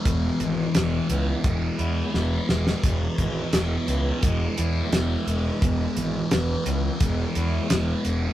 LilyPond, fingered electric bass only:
\new Staff \with { instrumentName = "Fingered electric bass" } { \clef bass \time 4/4 \key e \major \tempo 4 = 86 e,,8 gis,,8 e,,8 cis,8 e,,8 e,8 e,,8 e,,8 | e,,8 gis,,8 e,,8 cis,8 e,,8 e,8 e,,8 e,,8 | e,,8 gis,,8 e,,8 cis,8 e,,8 e,8 e,,8 e,,8 | }